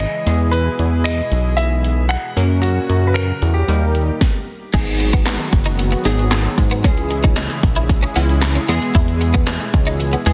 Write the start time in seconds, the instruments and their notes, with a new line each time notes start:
Already playing: analog synth pad C#3 E3 G#3 E4 G#4
0.00 grand piano D#5, finger snap, closed hi-hat
0.26 analog synth bass E2, analog synth pad B2, synth pluck E3 G#3 B3 G#4, closed hi-hat
0.51 grand piano B4, closed hi-hat
0.79 analog synth bass E2, closed hi-hat
1.04 grand piano D#5, finger snap, closed hi-hat
1.32 analog synth bass B1, closed hi-hat
1.57 grand piano E5, closed hi-hat
1.84 closed hi-hat
2.09 grand piano F#5, finger snap, closed hi-hat
2.36 analog synth bass F#2, analog synth pad A#2 C#3 F#3 C#4 F#4, synth pluck F#3 A#3 C#4 A#4, closed hi-hat
2.62 grand piano F#4, closed hi-hat
2.89 analog synth bass F#2, closed hi-hat
3.07 grand piano B4
3.14 grand piano A#4, finger snap, closed hi-hat
3.42 analog synth bass E2, closed hi-hat
3.54 grand piano G4
3.68 analog synth bass D#2, analog synth pad D#3 G3 D#4 G4, synth pluck G3 A#3 D#4 A#4, closed hi-hat
3.95 closed hi-hat
4.21 kick, snare
4.73 analog synth bass G#1, analog synth pad D#3 F#3 G#3 B3 F#4, synth pluck F#3 B3 D#4 G#4, clean electric guitar G#3, kick, closed hi-hat, crash
4.87 closed hi-hat
5.00 muted clean electric guitar stroke, closed hi-hat
5.13 clean electric guitar B3, kick, closed hi-hat
5.26 clean electric guitar B3, snare, clap, closed hi-hat
5.39 muted clean electric guitar stroke, closed hi-hat
5.53 analog synth bass F#1, kick, closed hi-hat
5.66 clean electric guitar D#4, closed hi-hat
5.79 muted clean electric guitar stroke, closed hi-hat
5.92 clean electric guitar B3, closed hi-hat
6.05 analog synth bass G#1, synth pluck F#3 B3 D#4 G#4, clean electric guitar G#3, closed hi-hat
6.19 closed hi-hat
6.31 clean electric guitar G#3, snare, clap, closed hi-hat
6.45 muted clean electric guitar stroke, closed hi-hat
6.58 analog synth bass G#2, kick, closed hi-hat
6.71 clean electric guitar B3, closed hi-hat
6.84 analog synth bass C#2, analog synth pad C#3 E3 E4 G#4, synth pluck E3 G#3 C#4 G#4, clean electric guitar C#4, kick, closed hi-hat
6.97 closed hi-hat
7.11 muted clean electric guitar stroke, closed hi-hat
7.24 clean electric guitar D#4, kick, closed hi-hat
7.36 clean electric guitar D#4, snare, clap, closed hi-hat
7.50 muted clean electric guitar stroke, closed hi-hat
7.63 analog synth bass A#1, kick, closed hi-hat
7.76 clean electric guitar E4, closed hi-hat
7.89 muted clean electric guitar stroke, kick, closed hi-hat
8.03 clean electric guitar C#4, closed hi-hat
8.15 analog synth bass C#2, synth pluck E3 G#3 C#4 E4, clean electric guitar B3, closed hi-hat
8.29 closed hi-hat
8.41 muted clean electric guitar stroke, snare, clap, closed hi-hat
8.55 clean electric guitar C#4, closed hi-hat
8.68 analog synth bass E2, analog synth pad B2, synth pluck E3 G#3 B3 G#4, clean electric guitar B3, closed hi-hat
8.82 closed hi-hat
8.95 analog synth bass E2, clean electric guitar E4, kick, closed hi-hat
9.08 closed hi-hat
9.21 muted clean electric guitar stroke, closed hi-hat
9.34 clean electric guitar B3, kick, closed hi-hat
9.47 clean electric guitar B3, snare, clap, closed hi-hat
9.60 muted clean electric guitar stroke, closed hi-hat
9.74 analog synth bass C#2, kick, closed hi-hat
9.87 clean electric guitar D#4, closed hi-hat
10.00 muted clean electric guitar stroke, closed hi-hat
10.13 clean electric guitar B3, closed hi-hat
10.26 analog synth bass E2, synth pluck E3 G#3 B3 G#4, clean electric guitar G#3, closed hi-hat